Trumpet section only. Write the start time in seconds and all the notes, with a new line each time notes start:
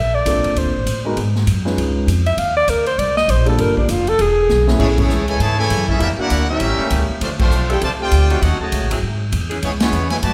4.80 A3 E4 G#4 C#5
4.99 A3 E4 G#4 C#5
5.28 E4 A4 C#5 G#5
5.41 E4 G#4 C#5 A5
5.60 E4 A4 C#5 G#5
5.90 C#4 G#4 A4 E5
6.02 D4 G4 A#4 E5
6.21 E4 A#4 D5 F#5
6.50 C#4 G4 A#4 E5
7.23 A3 D4 F4 C5
7.40 A3 D4 F4 C5
7.71 E4 A4 C5 G5
7.84 F4 C5 D5 A5
8.02 F4 C5 D5 G5
8.42 D#4 A4 C#5 F#5
8.61 F#4 C#5 D#5 A5
9.64 B3 E4 G#4 C#5
9.82 B3 E4 G#4 C#5
10.11 E4 B4 C#5 G#5
10.23 F#4 B4 D5 A5